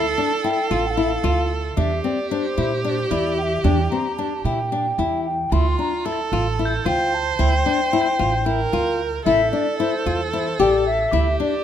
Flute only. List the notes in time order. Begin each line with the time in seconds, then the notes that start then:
0.17 A5
0.43 G5
0.69 F5
0.86 G5
0.90 F5
1.03 E5
1.07 F5
1.76 E5
2.04 D5
2.30 C5
2.85 D5
2.90 C5
3.10 D5
3.37 G5
3.42 E5
3.64 G5
3.90 A#5
4.17 A5
4.44 G5
5.25 G5
5.52 C6
5.79 A#5
5.97 A#5
6.06 A5
6.87 G5
7.14 A5
7.40 G5
9.25 E5
9.52 D5
9.79 C5
10.33 C5
10.60 D5
10.86 E5
11.41 D5